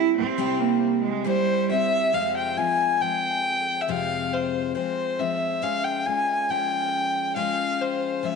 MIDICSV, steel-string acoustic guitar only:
0, 0, Header, 1, 2, 480
1, 0, Start_track
1, 0, Key_signature, -4, "minor"
1, 0, Tempo, 871966
1, 1172, Time_signature, 4, 2, 24, 8
1, 4599, End_track
2, 0, Start_track
2, 0, Title_t, "Steel-string acoustic guitar"
2, 0, Program_c, 0, 25
2, 0, Note_on_c, 0, 55, 63
2, 0, Note_on_c, 0, 60, 67
2, 0, Note_on_c, 0, 64, 72
2, 0, Note_on_c, 0, 67, 66
2, 202, Note_off_c, 0, 55, 0
2, 206, Note_off_c, 0, 60, 0
2, 208, Note_on_c, 0, 55, 77
2, 209, Note_off_c, 0, 64, 0
2, 209, Note_on_c, 0, 48, 69
2, 211, Note_off_c, 0, 67, 0
2, 212, Note_on_c, 0, 60, 75
2, 216, Note_on_c, 0, 64, 82
2, 217, Note_on_c, 0, 67, 82
2, 678, Note_off_c, 0, 55, 0
2, 684, Note_off_c, 0, 60, 0
2, 685, Note_on_c, 0, 55, 64
2, 688, Note_off_c, 0, 64, 0
2, 691, Note_off_c, 0, 48, 0
2, 691, Note_off_c, 0, 67, 0
2, 691, Note_on_c, 0, 60, 59
2, 694, Note_on_c, 0, 64, 64
2, 698, Note_on_c, 0, 67, 67
2, 927, Note_off_c, 0, 67, 0
2, 928, Note_off_c, 0, 55, 0
2, 931, Note_off_c, 0, 60, 0
2, 933, Note_off_c, 0, 64, 0
2, 933, Note_on_c, 0, 67, 54
2, 939, Note_on_c, 0, 64, 48
2, 945, Note_on_c, 0, 60, 44
2, 1170, Note_on_c, 0, 41, 69
2, 1171, Note_off_c, 0, 60, 0
2, 1173, Note_off_c, 0, 67, 0
2, 1173, Note_on_c, 0, 48, 62
2, 1174, Note_on_c, 0, 53, 66
2, 1175, Note_off_c, 0, 64, 0
2, 1175, Note_on_c, 0, 56, 66
2, 1177, Note_on_c, 0, 60, 66
2, 1178, Note_on_c, 0, 65, 70
2, 1409, Note_off_c, 0, 65, 0
2, 1411, Note_off_c, 0, 41, 0
2, 1412, Note_off_c, 0, 48, 0
2, 1413, Note_off_c, 0, 53, 0
2, 1413, Note_off_c, 0, 56, 0
2, 1415, Note_off_c, 0, 60, 0
2, 1416, Note_on_c, 0, 65, 42
2, 1421, Note_on_c, 0, 60, 35
2, 1426, Note_on_c, 0, 56, 36
2, 1429, Note_on_c, 0, 53, 37
2, 1649, Note_off_c, 0, 53, 0
2, 1654, Note_off_c, 0, 65, 0
2, 1655, Note_off_c, 0, 56, 0
2, 1656, Note_on_c, 0, 53, 51
2, 1657, Note_off_c, 0, 60, 0
2, 1662, Note_on_c, 0, 56, 48
2, 1667, Note_on_c, 0, 60, 52
2, 1669, Note_on_c, 0, 65, 52
2, 2135, Note_on_c, 0, 41, 66
2, 2136, Note_off_c, 0, 53, 0
2, 2136, Note_off_c, 0, 60, 0
2, 2138, Note_off_c, 0, 56, 0
2, 2138, Note_on_c, 0, 53, 66
2, 2139, Note_on_c, 0, 48, 59
2, 2140, Note_off_c, 0, 65, 0
2, 2140, Note_on_c, 0, 56, 71
2, 2142, Note_on_c, 0, 60, 71
2, 2142, Note_on_c, 0, 65, 78
2, 2610, Note_off_c, 0, 56, 0
2, 2611, Note_off_c, 0, 53, 0
2, 2613, Note_on_c, 0, 53, 47
2, 2614, Note_off_c, 0, 41, 0
2, 2615, Note_off_c, 0, 48, 0
2, 2615, Note_off_c, 0, 60, 0
2, 2617, Note_on_c, 0, 56, 54
2, 2622, Note_on_c, 0, 60, 54
2, 2623, Note_off_c, 0, 65, 0
2, 2625, Note_on_c, 0, 65, 53
2, 2851, Note_off_c, 0, 65, 0
2, 2852, Note_off_c, 0, 60, 0
2, 2853, Note_off_c, 0, 53, 0
2, 2855, Note_off_c, 0, 56, 0
2, 2857, Note_on_c, 0, 65, 44
2, 2858, Note_on_c, 0, 60, 45
2, 2866, Note_on_c, 0, 56, 42
2, 2867, Note_on_c, 0, 53, 38
2, 3085, Note_off_c, 0, 53, 0
2, 3089, Note_off_c, 0, 56, 0
2, 3091, Note_off_c, 0, 65, 0
2, 3092, Note_on_c, 0, 53, 65
2, 3095, Note_off_c, 0, 60, 0
2, 3095, Note_on_c, 0, 56, 68
2, 3098, Note_on_c, 0, 65, 80
2, 3100, Note_on_c, 0, 61, 74
2, 3326, Note_off_c, 0, 65, 0
2, 3332, Note_off_c, 0, 53, 0
2, 3333, Note_on_c, 0, 65, 46
2, 3334, Note_off_c, 0, 56, 0
2, 3336, Note_off_c, 0, 61, 0
2, 3342, Note_on_c, 0, 61, 36
2, 3349, Note_on_c, 0, 56, 34
2, 3571, Note_off_c, 0, 56, 0
2, 3573, Note_off_c, 0, 65, 0
2, 3573, Note_on_c, 0, 53, 50
2, 3576, Note_off_c, 0, 61, 0
2, 3578, Note_on_c, 0, 56, 54
2, 3582, Note_on_c, 0, 61, 51
2, 3585, Note_on_c, 0, 65, 57
2, 4045, Note_off_c, 0, 56, 0
2, 4048, Note_off_c, 0, 53, 0
2, 4050, Note_on_c, 0, 53, 63
2, 4052, Note_on_c, 0, 56, 68
2, 4053, Note_off_c, 0, 61, 0
2, 4055, Note_off_c, 0, 65, 0
2, 4056, Note_on_c, 0, 61, 73
2, 4057, Note_on_c, 0, 65, 76
2, 4523, Note_off_c, 0, 53, 0
2, 4528, Note_off_c, 0, 56, 0
2, 4530, Note_on_c, 0, 53, 51
2, 4534, Note_off_c, 0, 61, 0
2, 4534, Note_off_c, 0, 65, 0
2, 4535, Note_on_c, 0, 56, 54
2, 4540, Note_on_c, 0, 61, 53
2, 4544, Note_on_c, 0, 65, 52
2, 4599, Note_off_c, 0, 53, 0
2, 4599, Note_off_c, 0, 56, 0
2, 4599, Note_off_c, 0, 61, 0
2, 4599, Note_off_c, 0, 65, 0
2, 4599, End_track
0, 0, End_of_file